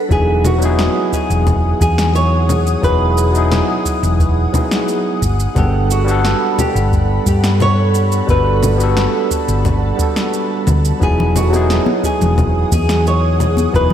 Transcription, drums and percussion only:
0.11 kick loud
0.11 shaker soft
0.45 low conga medium
0.45 shaker medium
0.62 shaker soft
0.79 snare medium
0.79 shaker soft
1.13 kick medium
1.13 shaker medium
1.31 shaker soft
1.47 kick loud
1.47 low conga medium
1.47 shaker soft
1.81 kick loud
1.81 shaker medium
1.98 snare medium
1.98 shaker soft
2.15 shaker soft
2.49 low conga medium
2.49 shaker medium
2.67 shaker soft
2.83 kick loud
2.83 shaker soft
3.18 shaker medium
3.35 shaker soft
3.52 snare medium
3.52 low conga medium
3.52 shaker soft
3.86 kick medium
3.86 shaker medium
4.03 shaker soft
4.20 kick loud
4.20 shaker soft
4.54 kick loud
4.54 low conga medium
4.54 shaker medium
4.71 snare medium
4.71 shaker soft
4.88 shaker soft
5.22 kick medium
5.22 shaker medium
5.40 shaker soft
5.56 kick loud
5.56 low conga medium
5.56 shaker soft
5.91 shaker medium
6.08 shaker soft
6.25 snare medium
6.25 shaker soft
6.58 kick medium
6.58 low conga medium
6.58 shaker medium
6.76 shaker soft
6.92 kick loud
6.92 shaker soft
7.26 kick loud
7.26 shaker medium
7.44 snare medium
7.44 shaker soft
7.60 low conga medium
7.60 shaker soft
7.95 shaker medium
8.12 shaker soft
8.29 kick loud
8.29 shaker soft
8.63 low conga medium
8.63 shaker medium
8.80 shaker soft
8.97 snare medium
8.97 shaker soft
9.31 kick medium
9.31 shaker medium
9.48 shaker soft
9.65 kick loud
9.65 low conga medium
9.65 shaker soft
9.99 kick loud
9.99 shaker medium
10.16 snare medium
10.16 shaker soft
10.33 shaker soft
10.67 kick medium
10.67 low conga medium
10.67 shaker medium
10.85 shaker soft
11.02 kick loud
11.02 shaker soft
11.20 low conga medium
11.36 low conga medium
11.36 shaker medium
11.53 high bongo medium
11.53 shaker soft
11.70 snare medium
11.70 shaker soft
11.86 high conga medium
12.04 kick medium
12.04 high bongo medium
12.04 shaker medium
12.21 low conga medium
12.21 shaker soft
12.38 kick loud
12.38 low conga medium
12.38 shaker soft
12.72 kick loud
12.72 high conga medium
12.72 shaker medium
12.89 snare medium
12.89 shaker soft
13.07 shaker soft
13.40 high bongo soft
13.40 low conga medium
13.40 shaker medium
13.57 high conga medium
13.57 shaker soft
13.74 kick loud
13.74 shaker soft
13.90 low conga medium

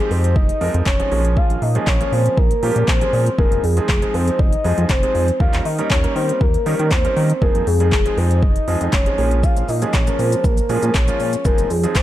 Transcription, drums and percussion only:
0.11 open hi-hat medium
0.24 closed hi-hat medium
0.36 kick loud
0.49 closed hi-hat medium
0.61 open hi-hat medium
0.74 closed hi-hat medium
0.86 kick loud
0.86 clap medium
0.86 clap loud
1.00 closed hi-hat medium
1.12 open hi-hat medium
1.25 closed hi-hat medium
1.37 kick loud
1.50 closed hi-hat medium
1.62 open hi-hat medium
1.75 closed hi-hat medium
1.87 kick loud
1.87 clap medium
1.87 clap loud
2.01 closed hi-hat medium
2.13 open hi-hat medium
2.26 closed hi-hat medium
2.37 kick loud
2.51 closed hi-hat medium
2.63 open hi-hat medium
2.76 closed hi-hat medium
2.88 kick loud
2.88 clap medium
2.88 clap loud
3.01 closed hi-hat medium
3.13 open hi-hat medium
3.26 closed hi-hat medium
3.38 kick loud
3.52 closed hi-hat medium
3.64 open hi-hat medium
3.77 closed hi-hat medium
3.89 kick loud
3.89 clap medium
3.89 clap loud
4.02 closed hi-hat medium
4.14 open hi-hat medium
4.28 closed hi-hat medium
4.39 kick loud
4.53 closed hi-hat medium
4.64 open hi-hat medium
4.78 closed hi-hat medium
4.90 kick loud
4.90 clap loud
5.03 closed hi-hat medium
5.15 open hi-hat medium
5.28 closed hi-hat medium
5.40 kick loud
5.53 clap medium
5.53 closed hi-hat medium
5.65 open hi-hat medium
5.79 closed hi-hat medium
5.90 kick loud
5.90 clap medium
5.90 clap loud
6.04 closed hi-hat medium
6.16 open hi-hat medium
6.29 closed hi-hat medium
6.41 kick loud
6.54 closed hi-hat medium
6.66 open hi-hat medium
6.79 closed hi-hat medium
6.91 kick loud
6.91 clap medium
6.91 clap loud
7.05 closed hi-hat medium
7.17 open hi-hat medium
7.30 closed hi-hat medium
7.42 kick loud
7.55 closed hi-hat medium
7.67 open hi-hat medium
7.80 closed hi-hat medium
7.92 kick loud
7.92 clap medium
7.92 clap loud
8.06 closed hi-hat medium
8.18 open hi-hat medium
8.31 closed hi-hat medium
8.42 kick loud
8.56 closed hi-hat medium
8.68 open hi-hat medium
8.81 closed hi-hat medium
8.93 kick loud
8.93 clap loud
9.06 closed hi-hat medium
9.18 open hi-hat medium
9.31 closed hi-hat medium
9.43 kick loud
9.43 shaker medium
9.57 closed hi-hat medium
9.57 shaker medium
9.69 open hi-hat medium
9.69 shaker medium
9.82 closed hi-hat medium
9.82 shaker medium
9.93 kick loud
9.93 clap loud
9.93 clap medium
9.93 shaker medium
10.07 closed hi-hat medium
10.07 shaker medium
10.19 open hi-hat medium
10.19 shaker medium
10.32 closed hi-hat medium
10.32 shaker medium
10.44 kick loud
10.44 shaker medium
10.57 closed hi-hat medium
10.57 shaker medium
10.69 open hi-hat medium
10.69 shaker medium
10.83 closed hi-hat medium
10.83 shaker medium
10.95 kick loud
10.95 clap loud
10.95 shaker medium
11.08 closed hi-hat medium
11.08 shaker medium
11.20 open hi-hat medium
11.20 shaker medium
11.33 closed hi-hat medium
11.33 shaker medium
11.45 kick loud
11.45 shaker medium
11.58 closed hi-hat medium
11.58 shaker medium
11.70 open hi-hat medium
11.70 shaker medium
11.83 closed hi-hat medium
11.83 shaker medium
11.95 kick loud
11.95 clap medium
11.95 clap loud
11.95 shaker medium

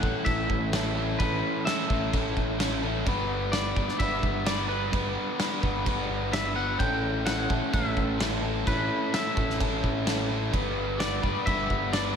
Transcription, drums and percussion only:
0.03 kick medium
0.26 kick loud
0.26 crash medium
0.50 kick medium
0.73 snare loud
0.73 crash medium
1.20 kick loud
1.20 crash medium
1.67 snare loud
1.67 crash medium
1.90 kick medium
2.13 kick loud
2.13 crash medium
2.37 kick medium
2.60 snare loud
2.60 crash medium
3.06 kick loud
3.06 crash medium
3.53 snare loud
3.53 crash medium
3.76 kick medium
3.88 snare soft
4.00 kick loud
4.00 crash medium
4.23 kick medium
4.47 snare loud
4.47 crash medium
4.93 kick loud
4.93 crash medium
5.40 snare loud
5.40 crash medium
5.63 kick medium
5.86 kick loud
5.86 crash medium
6.33 snare loud
6.33 crash medium
6.80 kick loud
6.80 crash medium
7.27 snare loud
7.27 crash medium
7.50 kick medium
7.74 kick loud
7.74 crash medium
7.97 kick medium
8.21 snare loud
8.21 crash medium
8.67 kick loud
8.67 crash medium
9.14 snare loud
9.14 crash medium
9.37 kick medium
9.50 snare soft
9.60 kick loud
9.60 crash medium
9.84 kick medium
10.07 snare loud
10.07 crash medium
10.54 kick medium
10.54 crash medium
11.00 snare loud
11.00 crash medium
11.23 kick medium
11.47 kick loud
11.47 crash medium
11.70 kick medium
11.93 snare loud
11.93 crash medium

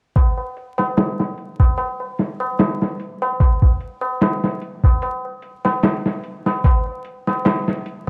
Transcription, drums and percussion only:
0.16 kick medium
0.16 closed hi-hat medium
0.16 tabla na soft
0.37 tabla na soft
0.57 closed hi-hat medium
0.78 snare soft
0.78 tabla na medium
0.97 snare loud
0.97 closed hi-hat medium
0.97 tabla na medium
1.19 snare soft
1.19 tabla na soft
1.38 closed hi-hat medium
1.60 kick medium
1.60 tabla na medium
1.78 closed hi-hat medium
1.78 tabla na medium
2.00 tabla na soft
2.19 snare soft
2.19 closed hi-hat medium
2.40 tabla na medium
2.59 snare loud
2.59 closed hi-hat medium
2.59 tabla na medium
2.81 snare soft
2.81 tabla na soft
3.00 closed hi-hat medium
3.22 tabla na medium
3.40 kick loud
3.40 closed hi-hat medium
3.40 tabla na medium
3.62 kick medium
3.62 tabla na soft
3.81 closed hi-hat medium
4.01 tabla na medium
4.21 snare loud
4.21 closed hi-hat medium
4.21 tabla na medium
4.44 snare soft
4.44 tabla na soft
4.61 closed hi-hat medium
4.84 kick medium
4.84 tabla na medium
5.02 closed hi-hat medium
5.02 tabla na medium
5.25 tabla na soft
5.42 closed hi-hat medium
5.65 snare soft
5.65 tabla na medium
5.83 snare loud
5.83 closed hi-hat medium
5.83 tabla na medium
6.06 snare soft
6.06 tabla na soft
6.24 closed hi-hat medium
6.46 snare soft
6.46 tabla na medium
6.64 kick loud
6.64 closed hi-hat medium
6.64 tabla na medium
6.86 tabla na soft
7.05 closed hi-hat medium
7.27 snare soft
7.27 tabla na medium
7.45 snare loud
7.45 closed hi-hat medium
7.45 tabla na medium
7.67 snare soft
7.67 tabla na soft
7.86 closed hi-hat medium

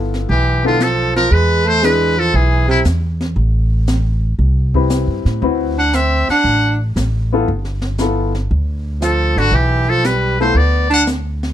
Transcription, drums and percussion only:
0.14 snare soft
0.29 brush sweep soft
0.80 snare medium
0.80 hi-hat pedal medium
1.16 snare soft
1.32 brush sweep soft
1.83 snare medium
1.83 hi-hat pedal medium
2.35 brush sweep soft
2.85 snare medium
2.85 hi-hat pedal medium
3.21 snare soft
3.36 brush sweep soft
3.87 snare medium
3.87 hi-hat pedal medium
4.39 brush sweep soft
4.74 kick medium
4.90 snare medium
4.90 hi-hat pedal medium
5.26 snare soft
5.42 brush sweep soft
5.93 snare medium
5.93 hi-hat pedal soft
6.29 snare soft
6.45 brush sweep soft
6.96 snare medium
6.96 hi-hat pedal soft
7.48 brush sweep soft
7.65 snare soft
7.82 snare soft
7.98 snare medium
7.98 hi-hat pedal medium
8.35 snare soft
8.51 brush sweep soft
9.02 snare medium
9.02 hi-hat pedal medium
9.38 snare soft
9.53 brush sweep soft
10.04 snare medium
10.04 hi-hat pedal medium
10.56 brush sweep soft
11.07 snare medium
11.07 hi-hat pedal medium
11.43 snare soft

